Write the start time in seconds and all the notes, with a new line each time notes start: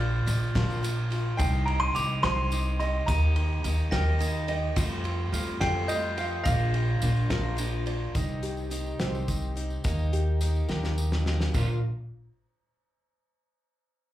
Already playing: A#1 D5 F6
0.00 A#3 D4 F4
0.26 A#1 F3 A#3 D4 F4, ride, tambourine
0.43 tambourine
0.55 A#1 A#2 F3 A#3 D4 F4, kick, snare, ride
0.71 tambourine
0.83 F3 A#3 D4 F4, ride, tambourine
1.10 A#3 D4 F4, ride, tambourine
1.37 C2 C3 D#3 C4 D#4 G4 G5 C7, kick, ride, tambourine
1.66 C4 D#4 G4 A#5 D7, ride
1.80 C6 D#7
1.95 C2 D#3 C4 D#4 G4 D6 F7, ride, tambourine
2.23 C2 C3 D#3 C4 D#4 G4 C5 C6 D#7, kick, snare, ride
2.51 D#3 C4 D#4 G4, ride, tambourine
2.79 C4 D#4 G4 D#5, ride, tambourine
3.06 D#2 D#3 A#3 D#4 G4 A#5 D#7, kick, ride, tambourine
3.36 A#3 D#4 G4, ride
3.64 D#2 D#3 A#3 D#4 G4, ride, tambourine
3.91 D#2 D#3 A#3 D#4 G4 A#4 G5 A#6, kick, snare, ride
4.19 D#3 A#3 D#4 G4, ride, tambourine
4.48 A#3 D#4 G4 D#5, ride, tambourine
4.76 F2 C3 G3 A3 C4 F4, kick, ride, tambourine
5.04 G3 A3 C4 F4, ride
5.33 F2 G3 A3 C4 F4, ride, tambourine
5.61 F2 C3 G3 A3 C4 F4 A4 G5 C7, kick, snare, ride
5.88 G3 A3 C4 F4 D#5 G6, ride, tambourine
6.17 G3 A3 C4 F4 F5, ride, tambourine
6.44 A#1 A#2 F3 A#3 D4 F4 F5 A#6, kick, ride, tambourine
6.74 A#3 D4 F4, ride
7.02 A#1 F3 A#3 D4 F4, ride, tambourine
7.16 tambourine
7.30 A#1 A#2 F3 A#3 D4 F4 A#4, kick, snare, ride
7.57 F3 A#3 D4 F4, ride, tambourine
7.86 A#3 D4 F4 D5, ride
8.15 C2 C3 D#3 C4 D#4 G4, kick, closed hi-hat, tambourine
8.43 G4, closed hi-hat
8.57 tambourine
8.70 D#3 C4 D#4 G4, closed hi-hat, tambourine
8.86 tambourine
8.99 C2 C3 D#3 C4 D#4 G4 C5, snare, closed hi-hat
9.14 tambourine
9.28 D#4, kick, closed hi-hat, tambourine
9.42 tambourine
9.55 C4 D#4 G4, closed hi-hat
9.70 tambourine
9.84 D#2 D#3 A#3 D#4 G4, kick, closed hi-hat, tambourine
9.98 tambourine
10.13 G4, closed hi-hat
10.41 D#3 A#3 D#4 G4, closed hi-hat, tambourine
10.55 tambourine
10.68 D#2 D#3 A#3 D#4 G4 A#4, snare
10.84 snare, tambourine
10.98 D#4, tambourine
11.12 snare, tambourine
11.26 A#3 D#4 G4, snare
11.41 snare, tambourine
11.54 A#1 A#2 F3 A#3 D4 F4 A#4, kick, china, tambourine